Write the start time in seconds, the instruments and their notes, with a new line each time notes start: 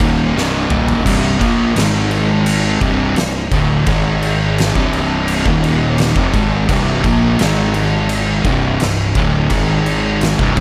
0.00 fingered electric bass D#1, distorted electric guitar D#2 A#2 D#3, kick, crash
0.36 fingered electric bass C1, distorted electric guitar C2 G2 C3, snare
0.69 fingered electric bass D#1, distorted electric guitar D#2 A#2 D#3, mid tom
0.88 floor tom
1.05 fingered electric bass C1, distorted electric guitar C2 G2 C3, kick, crash
1.39 fingered electric bass A#1, distorted electric guitar A#2 F3 A#3, kick, crash
1.75 fingered electric bass G#1, distorted electric guitar G#2 D#3 G#3, snare, crash
2.11 crash
2.46 crash
2.81 fingered electric bass C1, distorted electric guitar C2 G2 C3, kick, crash
3.16 fingered electric bass C1, distorted electric guitar C2 G2, snare, crash
3.52 fingered electric bass D1, distorted electric guitar D2 A2 D3, kick, crash
3.86 fingered electric bass G#1, distorted electric guitar G#2 D#3 G#3, kick, crash
4.22 crash
4.58 snare, crash
4.74 fingered electric bass C1, distorted electric guitar C2 G2 C3, kick
4.93 crash
5.28 crash
5.46 fingered electric bass D#1, distorted electric guitar D#2 A#2 D#3, kick
5.64 crash
5.98 snare, crash
6.16 fingered electric bass F1, distorted electric guitar F2 C3, kick
6.34 fingered electric bass G#1, distorted electric guitar G#2 D#3 G#3, kick, crash
6.68 fingered electric bass C1, distorted electric guitar C2 G2 C3, kick, crash
7.04 fingered electric bass A#1, distorted electric guitar A#2 F3 A#3, kick, crash
7.39 fingered electric bass G#1, distorted electric guitar G#2 D#3 G#3, snare, crash
7.74 crash
8.09 crash
8.45 fingered electric bass C1, distorted electric guitar C2 G2 C3, kick, crash
8.80 fingered electric bass C1, distorted electric guitar C2 G2, snare, crash
9.15 fingered electric bass D1, distorted electric guitar D2 A2 D3, kick, crash
9.50 fingered electric bass G#1, distorted electric guitar G#2 D#3 G#3, kick, crash
9.86 crash
10.21 snare, crash
10.39 fingered electric bass C1, distorted electric guitar C2 G2, kick
10.57 kick, crash